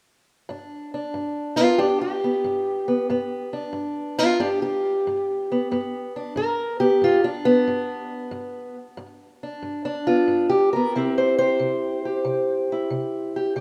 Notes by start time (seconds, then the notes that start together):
0.49 G2 D4
0.94 D4
1.14 G2
1.56 B3 F4 A#4
1.78 G2 D4 G4
2.01 G4
2.24 B3
2.44 G2
2.88 B3
3.10 G2 B3
3.53 D4
3.73 G2
4.18 B3 F4 A#4
4.40 G2 D4 G4
4.62 G4
5.07 G2
5.52 B3
5.71 G2 B3
6.16 D4
6.36 G2 A#4
6.80 B3 G4
7.02 G2 F4
7.24 D4
7.45 B3
7.68 G2
8.31 G2
8.97 G2
9.43 D4
9.62 G2
9.85 D4
10.07 B3 F4
10.28 G2
10.50 G4
10.73 B3 A#4
10.96 C3 C4 E4 G4
11.18 C5
11.38 G4 C5
11.60 C3
12.05 G4
12.25 C3
12.72 E4
12.90 C3
13.36 G4
13.56 C3 G4